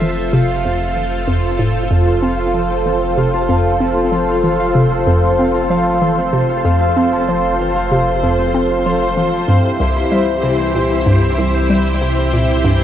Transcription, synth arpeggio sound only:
0, 0, Header, 1, 2, 480
1, 0, Start_track
1, 0, Key_signature, -1, "major"
1, 0, Tempo, 631579
1, 1454, Time_signature, 4, 2, 24, 8
1, 9757, End_track
2, 0, Start_track
2, 0, Title_t, "Synth arpeggio sound"
2, 0, Program_c, 0, 84
2, 12, Note_on_c, 0, 52, 76
2, 132, Note_off_c, 0, 52, 0
2, 251, Note_on_c, 0, 48, 100
2, 324, Note_off_c, 0, 48, 0
2, 492, Note_on_c, 0, 41, 100
2, 671, Note_off_c, 0, 41, 0
2, 731, Note_on_c, 0, 52, 76
2, 851, Note_off_c, 0, 52, 0
2, 970, Note_on_c, 0, 41, 99
2, 1043, Note_off_c, 0, 41, 0
2, 1209, Note_on_c, 0, 45, 102
2, 1330, Note_off_c, 0, 45, 0
2, 1450, Note_on_c, 0, 41, 98
2, 1630, Note_off_c, 0, 41, 0
2, 1691, Note_on_c, 0, 60, 74
2, 1764, Note_off_c, 0, 60, 0
2, 1930, Note_on_c, 0, 53, 74
2, 2110, Note_off_c, 0, 53, 0
2, 2171, Note_on_c, 0, 52, 73
2, 2291, Note_off_c, 0, 52, 0
2, 2410, Note_on_c, 0, 48, 98
2, 2483, Note_off_c, 0, 48, 0
2, 2650, Note_on_c, 0, 41, 105
2, 2830, Note_off_c, 0, 41, 0
2, 2890, Note_on_c, 0, 60, 78
2, 2963, Note_off_c, 0, 60, 0
2, 3129, Note_on_c, 0, 53, 76
2, 3310, Note_off_c, 0, 53, 0
2, 3371, Note_on_c, 0, 52, 81
2, 3491, Note_off_c, 0, 52, 0
2, 3610, Note_on_c, 0, 48, 102
2, 3683, Note_off_c, 0, 48, 0
2, 3851, Note_on_c, 0, 41, 102
2, 4031, Note_off_c, 0, 41, 0
2, 4096, Note_on_c, 0, 60, 74
2, 4166, Note_off_c, 0, 60, 0
2, 4332, Note_on_c, 0, 53, 82
2, 4511, Note_off_c, 0, 53, 0
2, 4573, Note_on_c, 0, 52, 79
2, 4692, Note_off_c, 0, 52, 0
2, 4810, Note_on_c, 0, 48, 102
2, 4883, Note_off_c, 0, 48, 0
2, 5052, Note_on_c, 0, 41, 105
2, 5231, Note_off_c, 0, 41, 0
2, 5293, Note_on_c, 0, 60, 83
2, 5365, Note_off_c, 0, 60, 0
2, 5534, Note_on_c, 0, 53, 75
2, 5712, Note_off_c, 0, 53, 0
2, 5775, Note_on_c, 0, 52, 74
2, 5893, Note_off_c, 0, 52, 0
2, 6014, Note_on_c, 0, 48, 102
2, 6085, Note_off_c, 0, 48, 0
2, 6255, Note_on_c, 0, 41, 99
2, 6432, Note_off_c, 0, 41, 0
2, 6492, Note_on_c, 0, 60, 79
2, 6564, Note_off_c, 0, 60, 0
2, 6732, Note_on_c, 0, 53, 79
2, 6911, Note_off_c, 0, 53, 0
2, 6969, Note_on_c, 0, 52, 77
2, 7090, Note_off_c, 0, 52, 0
2, 7207, Note_on_c, 0, 43, 101
2, 7281, Note_off_c, 0, 43, 0
2, 7448, Note_on_c, 0, 36, 104
2, 7629, Note_off_c, 0, 36, 0
2, 7687, Note_on_c, 0, 55, 76
2, 7762, Note_off_c, 0, 55, 0
2, 7929, Note_on_c, 0, 48, 75
2, 8110, Note_off_c, 0, 48, 0
2, 8168, Note_on_c, 0, 46, 80
2, 8289, Note_off_c, 0, 46, 0
2, 8407, Note_on_c, 0, 43, 103
2, 8482, Note_off_c, 0, 43, 0
2, 8650, Note_on_c, 0, 36, 100
2, 8830, Note_off_c, 0, 36, 0
2, 8892, Note_on_c, 0, 55, 78
2, 8964, Note_off_c, 0, 55, 0
2, 9132, Note_on_c, 0, 48, 86
2, 9311, Note_off_c, 0, 48, 0
2, 9375, Note_on_c, 0, 46, 77
2, 9493, Note_off_c, 0, 46, 0
2, 9612, Note_on_c, 0, 43, 99
2, 9684, Note_off_c, 0, 43, 0
2, 9757, End_track
0, 0, End_of_file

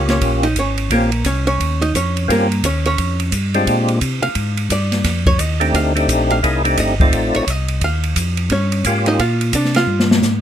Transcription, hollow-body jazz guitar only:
0, 0, Header, 1, 2, 480
1, 0, Start_track
1, 0, Tempo, 345423
1, 1258, Time_signature, 4, 2, 24, 8
1, 14466, End_track
2, 0, Start_track
2, 0, Title_t, "Hollow-body jazz guitar"
2, 0, Program_c, 0, 26
2, 132, Note_on_c, 0, 61, 67
2, 136, Note_on_c, 0, 73, 76
2, 601, Note_on_c, 0, 63, 73
2, 603, Note_on_c, 0, 75, 84
2, 738, Note_off_c, 0, 73, 0
2, 739, Note_off_c, 0, 61, 0
2, 772, Note_off_c, 0, 75, 0
2, 774, Note_off_c, 0, 63, 0
2, 817, Note_on_c, 0, 73, 69
2, 825, Note_on_c, 0, 61, 59
2, 1245, Note_off_c, 0, 73, 0
2, 1249, Note_off_c, 0, 61, 0
2, 1281, Note_on_c, 0, 58, 45
2, 1289, Note_on_c, 0, 70, 54
2, 1718, Note_off_c, 0, 58, 0
2, 1718, Note_off_c, 0, 70, 0
2, 1753, Note_on_c, 0, 61, 71
2, 1754, Note_on_c, 0, 73, 76
2, 2023, Note_off_c, 0, 73, 0
2, 2026, Note_off_c, 0, 61, 0
2, 2041, Note_on_c, 0, 61, 70
2, 2043, Note_on_c, 0, 73, 89
2, 2521, Note_on_c, 0, 63, 68
2, 2528, Note_on_c, 0, 75, 78
2, 2651, Note_off_c, 0, 73, 0
2, 2653, Note_off_c, 0, 61, 0
2, 2694, Note_off_c, 0, 63, 0
2, 2694, Note_off_c, 0, 75, 0
2, 2719, Note_on_c, 0, 73, 76
2, 2729, Note_on_c, 0, 61, 61
2, 3155, Note_off_c, 0, 73, 0
2, 3160, Note_off_c, 0, 61, 0
2, 3210, Note_on_c, 0, 58, 50
2, 3219, Note_on_c, 0, 70, 49
2, 3643, Note_off_c, 0, 58, 0
2, 3643, Note_off_c, 0, 70, 0
2, 3682, Note_on_c, 0, 73, 89
2, 3692, Note_on_c, 0, 61, 68
2, 3962, Note_off_c, 0, 73, 0
2, 3967, Note_off_c, 0, 61, 0
2, 3978, Note_on_c, 0, 73, 88
2, 3988, Note_on_c, 0, 61, 70
2, 4581, Note_off_c, 0, 73, 0
2, 4586, Note_off_c, 0, 61, 0
2, 5871, Note_on_c, 0, 77, 100
2, 6487, Note_off_c, 0, 77, 0
2, 6558, Note_on_c, 0, 74, 74
2, 7274, Note_off_c, 0, 74, 0
2, 7321, Note_on_c, 0, 73, 99
2, 7514, Note_off_c, 0, 73, 0
2, 7514, Note_on_c, 0, 75, 84
2, 7985, Note_off_c, 0, 75, 0
2, 7997, Note_on_c, 0, 77, 86
2, 8433, Note_off_c, 0, 77, 0
2, 8774, Note_on_c, 0, 77, 94
2, 9378, Note_off_c, 0, 77, 0
2, 9449, Note_on_c, 0, 75, 86
2, 10160, Note_off_c, 0, 75, 0
2, 10229, Note_on_c, 0, 73, 83
2, 10426, Note_off_c, 0, 73, 0
2, 10426, Note_on_c, 0, 75, 82
2, 10880, Note_off_c, 0, 75, 0
2, 10899, Note_on_c, 0, 77, 85
2, 11324, Note_off_c, 0, 77, 0
2, 11834, Note_on_c, 0, 61, 63
2, 11842, Note_on_c, 0, 73, 81
2, 12552, Note_off_c, 0, 61, 0
2, 12552, Note_off_c, 0, 73, 0
2, 12609, Note_on_c, 0, 63, 77
2, 12617, Note_on_c, 0, 75, 91
2, 12776, Note_off_c, 0, 63, 0
2, 12778, Note_off_c, 0, 75, 0
2, 12783, Note_on_c, 0, 65, 79
2, 12787, Note_on_c, 0, 77, 81
2, 13224, Note_off_c, 0, 77, 0
2, 13226, Note_off_c, 0, 65, 0
2, 13270, Note_on_c, 0, 74, 72
2, 13279, Note_on_c, 0, 62, 60
2, 13554, Note_off_c, 0, 74, 0
2, 13559, Note_off_c, 0, 62, 0
2, 13565, Note_on_c, 0, 77, 102
2, 13570, Note_on_c, 0, 65, 84
2, 14006, Note_off_c, 0, 77, 0
2, 14010, Note_off_c, 0, 65, 0
2, 14466, End_track
0, 0, End_of_file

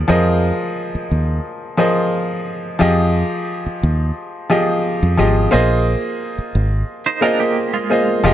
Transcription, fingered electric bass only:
0, 0, Header, 1, 3, 480
1, 0, Start_track
1, 0, Tempo, 679502
1, 64, Time_signature, 4, 2, 24, 8
1, 5890, End_track
2, 0, Start_track
2, 0, Title_t, "Fingered electric bass"
2, 0, Program_c, 0, 33
2, 69, Note_on_c, 0, 41, 92
2, 357, Note_off_c, 0, 41, 0
2, 787, Note_on_c, 0, 39, 71
2, 979, Note_off_c, 0, 39, 0
2, 1988, Note_on_c, 0, 41, 97
2, 2277, Note_off_c, 0, 41, 0
2, 2708, Note_on_c, 0, 39, 84
2, 2900, Note_off_c, 0, 39, 0
2, 3551, Note_on_c, 0, 41, 79
2, 3645, Note_off_c, 0, 41, 0
2, 3670, Note_on_c, 0, 32, 79
2, 3861, Note_off_c, 0, 32, 0
2, 3913, Note_on_c, 0, 34, 90
2, 4200, Note_off_c, 0, 34, 0
2, 4627, Note_on_c, 0, 32, 85
2, 4819, Note_off_c, 0, 32, 0
2, 5825, Note_on_c, 0, 29, 93
2, 5890, Note_off_c, 0, 29, 0
2, 5890, End_track
3, 0, Start_track
3, 0, Title_t, "Muted fingered electric bass strokes"
3, 670, Note_on_c, 9, 29, 46
3, 741, Note_off_c, 9, 29, 0
3, 2588, Note_on_c, 9, 29, 47
3, 2659, Note_off_c, 9, 29, 0
3, 4510, Note_on_c, 9, 29, 46
3, 4581, Note_off_c, 9, 29, 0
3, 5890, End_track
0, 0, End_of_file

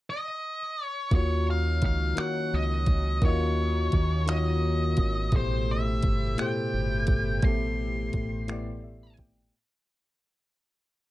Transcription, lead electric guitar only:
0, 0, Header, 1, 2, 480
1, 0, Start_track
1, 0, Tempo, 701754
1, 762, Time_signature, 6, 3, 24, 8
1, 7598, End_track
2, 0, Start_track
2, 0, Title_t, "Lead electric guitar"
2, 0, Program_c, 0, 29
2, 67, Note_on_c, 0, 75, 75
2, 574, Note_off_c, 0, 75, 0
2, 574, Note_on_c, 0, 73, 75
2, 783, Note_off_c, 0, 73, 0
2, 786, Note_on_c, 0, 73, 78
2, 998, Note_off_c, 0, 73, 0
2, 1029, Note_on_c, 0, 77, 76
2, 1262, Note_off_c, 0, 77, 0
2, 1269, Note_on_c, 0, 77, 72
2, 1502, Note_off_c, 0, 77, 0
2, 1506, Note_on_c, 0, 78, 75
2, 1741, Note_off_c, 0, 78, 0
2, 1744, Note_on_c, 0, 75, 79
2, 2220, Note_off_c, 0, 75, 0
2, 2222, Note_on_c, 0, 73, 84
2, 2905, Note_off_c, 0, 73, 0
2, 2937, Note_on_c, 0, 75, 77
2, 3663, Note_off_c, 0, 75, 0
2, 3666, Note_on_c, 0, 72, 94
2, 3901, Note_off_c, 0, 72, 0
2, 3908, Note_on_c, 0, 76, 96
2, 4370, Note_off_c, 0, 76, 0
2, 4373, Note_on_c, 0, 79, 83
2, 5094, Note_on_c, 0, 84, 96
2, 5109, Note_off_c, 0, 79, 0
2, 6260, Note_off_c, 0, 84, 0
2, 7598, End_track
0, 0, End_of_file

